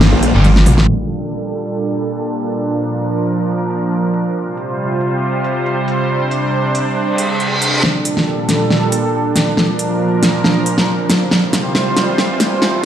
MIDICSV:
0, 0, Header, 1, 8, 480
1, 0, Start_track
1, 0, Key_signature, -2, "minor"
1, 0, Tempo, 434783
1, 970, Time_signature, 4, 2, 24, 8
1, 14186, End_track
2, 0, Start_track
2, 0, Title_t, "Distorted electric guitar"
2, 0, Program_c, 0, 30
2, 0, Note_on_c, 0, 58, 93
2, 0, Note_on_c, 0, 67, 86
2, 0, Note_on_c, 0, 74, 116
2, 365, Note_off_c, 0, 58, 0
2, 365, Note_off_c, 0, 67, 0
2, 365, Note_off_c, 0, 74, 0
2, 377, Note_on_c, 0, 74, 104
2, 381, Note_on_c, 0, 67, 76
2, 385, Note_on_c, 0, 58, 81
2, 498, Note_off_c, 0, 58, 0
2, 498, Note_off_c, 0, 67, 0
2, 498, Note_off_c, 0, 74, 0
2, 14186, End_track
3, 0, Start_track
3, 0, Title_t, "Supersaw synth"
3, 0, Program_c, 1, 81
3, 0, Note_on_c, 1, 50, 85
3, 0, Note_on_c, 1, 55, 80
3, 0, Note_on_c, 1, 58, 79
3, 0, Note_on_c, 1, 65, 93
3, 926, Note_off_c, 1, 50, 0
3, 926, Note_off_c, 1, 55, 0
3, 926, Note_off_c, 1, 58, 0
3, 957, Note_off_c, 1, 65, 0
3, 970, Note_on_c, 1, 46, 82
3, 970, Note_on_c, 1, 55, 72
3, 970, Note_on_c, 1, 62, 74
3, 970, Note_on_c, 1, 69, 94
3, 2871, Note_off_c, 1, 55, 0
3, 2871, Note_off_c, 1, 69, 0
3, 2890, Note_on_c, 1, 53, 78
3, 2890, Note_on_c, 1, 70, 94
3, 4772, Note_off_c, 1, 46, 0
3, 4772, Note_off_c, 1, 62, 0
3, 4791, Note_off_c, 1, 53, 0
3, 4791, Note_off_c, 1, 70, 0
3, 4810, Note_on_c, 1, 48, 82
3, 4810, Note_on_c, 1, 55, 78
3, 4810, Note_on_c, 1, 65, 77
3, 4810, Note_on_c, 1, 72, 89
3, 6711, Note_off_c, 1, 65, 0
3, 6731, Note_on_c, 1, 62, 76
3, 8612, Note_off_c, 1, 48, 0
3, 8612, Note_off_c, 1, 55, 0
3, 8612, Note_off_c, 1, 72, 0
3, 8631, Note_off_c, 1, 62, 0
3, 8651, Note_on_c, 1, 46, 83
3, 8651, Note_on_c, 1, 55, 76
3, 8651, Note_on_c, 1, 62, 78
3, 8651, Note_on_c, 1, 69, 91
3, 10551, Note_off_c, 1, 46, 0
3, 10551, Note_off_c, 1, 55, 0
3, 10551, Note_off_c, 1, 69, 0
3, 10570, Note_on_c, 1, 46, 86
3, 10571, Note_on_c, 1, 53, 80
3, 10571, Note_on_c, 1, 70, 90
3, 12452, Note_off_c, 1, 62, 0
3, 12471, Note_off_c, 1, 46, 0
3, 12471, Note_off_c, 1, 53, 0
3, 12471, Note_off_c, 1, 70, 0
3, 12490, Note_on_c, 1, 48, 85
3, 12491, Note_on_c, 1, 55, 81
3, 12491, Note_on_c, 1, 65, 78
3, 12491, Note_on_c, 1, 72, 92
3, 14186, Note_off_c, 1, 48, 0
3, 14186, Note_off_c, 1, 55, 0
3, 14186, Note_off_c, 1, 65, 0
3, 14186, Note_off_c, 1, 72, 0
3, 14186, End_track
4, 0, Start_track
4, 0, Title_t, "Wobble bass"
4, 0, Program_c, 2, 39
4, 139, Note_on_c, 2, 34, 98
4, 358, Note_off_c, 2, 34, 0
4, 14186, End_track
5, 0, Start_track
5, 0, Title_t, "Detuned saw bass"
5, 0, Program_c, 3, 39
5, 0, Note_on_c, 3, 31, 96
5, 119, Note_off_c, 3, 31, 0
5, 379, Note_on_c, 3, 31, 99
5, 713, Note_off_c, 3, 31, 0
5, 730, Note_on_c, 3, 33, 98
5, 952, Note_off_c, 3, 33, 0
5, 14186, End_track
6, 0, Start_track
6, 0, Title_t, "Reverse cymbal"
6, 0, Program_c, 4, 119
6, 7690, Note_on_c, 4, 60, 75
6, 8650, Note_off_c, 4, 60, 0
6, 14186, End_track
7, 0, Start_track
7, 0, Title_t, "Riser"
7, 0, Program_c, 5, 103
7, 8650, Note_on_c, 5, 60, 79
7, 14186, Note_off_c, 5, 60, 0
7, 14186, End_track
8, 0, Start_track
8, 0, Title_t, "Drums"
8, 10, Note_on_c, 9, 38, 114
8, 10, Note_on_c, 9, 49, 70
8, 120, Note_off_c, 9, 38, 0
8, 120, Note_off_c, 9, 49, 0
8, 250, Note_on_c, 9, 42, 83
8, 360, Note_off_c, 9, 42, 0
8, 490, Note_on_c, 9, 42, 38
8, 490, Note_on_c, 9, 48, 63
8, 490, Note_on_c, 9, 49, 50
8, 601, Note_off_c, 9, 42, 0
8, 601, Note_off_c, 9, 48, 0
8, 601, Note_off_c, 9, 49, 0
8, 619, Note_on_c, 9, 38, 65
8, 729, Note_off_c, 9, 38, 0
8, 730, Note_on_c, 9, 46, 103
8, 730, Note_on_c, 9, 47, 91
8, 840, Note_off_c, 9, 46, 0
8, 840, Note_off_c, 9, 47, 0
8, 859, Note_on_c, 9, 38, 83
8, 969, Note_off_c, 9, 38, 0
8, 970, Note_on_c, 9, 57, 79
8, 1080, Note_off_c, 9, 57, 0
8, 1210, Note_on_c, 9, 42, 80
8, 1320, Note_off_c, 9, 42, 0
8, 1690, Note_on_c, 9, 42, 77
8, 1801, Note_off_c, 9, 42, 0
8, 2170, Note_on_c, 9, 42, 77
8, 2280, Note_off_c, 9, 42, 0
8, 2410, Note_on_c, 9, 42, 36
8, 2520, Note_off_c, 9, 42, 0
8, 2650, Note_on_c, 9, 42, 82
8, 2760, Note_off_c, 9, 42, 0
8, 3130, Note_on_c, 9, 42, 81
8, 3240, Note_off_c, 9, 42, 0
8, 3610, Note_on_c, 9, 42, 78
8, 3720, Note_off_c, 9, 42, 0
8, 4090, Note_on_c, 9, 42, 81
8, 4200, Note_off_c, 9, 42, 0
8, 4330, Note_on_c, 9, 42, 38
8, 4441, Note_off_c, 9, 42, 0
8, 4570, Note_on_c, 9, 42, 81
8, 4680, Note_off_c, 9, 42, 0
8, 5050, Note_on_c, 9, 42, 78
8, 5161, Note_off_c, 9, 42, 0
8, 5530, Note_on_c, 9, 42, 75
8, 5641, Note_off_c, 9, 42, 0
8, 6010, Note_on_c, 9, 42, 77
8, 6120, Note_off_c, 9, 42, 0
8, 6250, Note_on_c, 9, 42, 35
8, 6360, Note_off_c, 9, 42, 0
8, 6490, Note_on_c, 9, 42, 78
8, 6600, Note_off_c, 9, 42, 0
8, 6970, Note_on_c, 9, 42, 75
8, 7080, Note_off_c, 9, 42, 0
8, 7450, Note_on_c, 9, 42, 72
8, 7561, Note_off_c, 9, 42, 0
8, 7930, Note_on_c, 9, 42, 76
8, 8040, Note_off_c, 9, 42, 0
8, 8170, Note_on_c, 9, 42, 33
8, 8281, Note_off_c, 9, 42, 0
8, 8410, Note_on_c, 9, 42, 77
8, 8520, Note_off_c, 9, 42, 0
8, 8650, Note_on_c, 9, 38, 47
8, 8761, Note_off_c, 9, 38, 0
8, 8890, Note_on_c, 9, 42, 83
8, 9000, Note_off_c, 9, 42, 0
8, 9019, Note_on_c, 9, 38, 43
8, 9129, Note_off_c, 9, 38, 0
8, 9370, Note_on_c, 9, 38, 49
8, 9370, Note_on_c, 9, 42, 80
8, 9480, Note_off_c, 9, 38, 0
8, 9480, Note_off_c, 9, 42, 0
8, 9610, Note_on_c, 9, 38, 52
8, 9720, Note_off_c, 9, 38, 0
8, 9850, Note_on_c, 9, 42, 83
8, 9960, Note_off_c, 9, 42, 0
8, 10329, Note_on_c, 9, 38, 58
8, 10329, Note_on_c, 9, 42, 83
8, 10440, Note_off_c, 9, 38, 0
8, 10440, Note_off_c, 9, 42, 0
8, 10569, Note_on_c, 9, 38, 57
8, 10680, Note_off_c, 9, 38, 0
8, 10810, Note_on_c, 9, 42, 85
8, 10920, Note_off_c, 9, 42, 0
8, 11290, Note_on_c, 9, 38, 62
8, 11290, Note_on_c, 9, 42, 83
8, 11400, Note_off_c, 9, 38, 0
8, 11400, Note_off_c, 9, 42, 0
8, 11530, Note_on_c, 9, 38, 67
8, 11640, Note_off_c, 9, 38, 0
8, 11770, Note_on_c, 9, 42, 87
8, 11880, Note_off_c, 9, 42, 0
8, 11899, Note_on_c, 9, 38, 60
8, 12009, Note_off_c, 9, 38, 0
8, 12250, Note_on_c, 9, 38, 74
8, 12250, Note_on_c, 9, 42, 84
8, 12360, Note_off_c, 9, 38, 0
8, 12360, Note_off_c, 9, 42, 0
8, 12490, Note_on_c, 9, 38, 72
8, 12600, Note_off_c, 9, 38, 0
8, 12730, Note_on_c, 9, 38, 77
8, 12730, Note_on_c, 9, 42, 83
8, 12840, Note_off_c, 9, 38, 0
8, 12840, Note_off_c, 9, 42, 0
8, 12970, Note_on_c, 9, 38, 78
8, 13080, Note_off_c, 9, 38, 0
8, 13210, Note_on_c, 9, 38, 79
8, 13210, Note_on_c, 9, 42, 77
8, 13320, Note_off_c, 9, 38, 0
8, 13320, Note_off_c, 9, 42, 0
8, 13450, Note_on_c, 9, 38, 82
8, 13560, Note_off_c, 9, 38, 0
8, 13690, Note_on_c, 9, 38, 85
8, 13690, Note_on_c, 9, 42, 82
8, 13800, Note_off_c, 9, 38, 0
8, 13800, Note_off_c, 9, 42, 0
8, 13930, Note_on_c, 9, 38, 84
8, 14040, Note_off_c, 9, 38, 0
8, 14186, End_track
0, 0, End_of_file